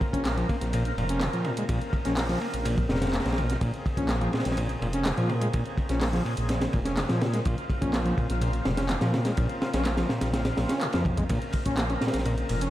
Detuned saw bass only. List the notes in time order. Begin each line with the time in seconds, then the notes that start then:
0.13 A#1
0.61 A#1
0.97 F1
1.34 A#2
1.69 A#1
2.06 A#1
2.54 A#1
2.89 F1
3.26 A#1
3.61 A#1
3.97 A#1
4.46 A#1
4.82 F1
5.18 A#2
5.54 A#1
5.90 A#1
6.38 A#1
6.74 F1
7.10 A#2
7.46 A#1
7.82 A#1
8.30 A#1
8.66 F1
9.02 A#2
9.37 A#1
9.74 A#1
10.21 A#1
10.58 A#1
10.94 F2
11.30 A#1
11.66 A#1
12.14 A#1
12.50 F1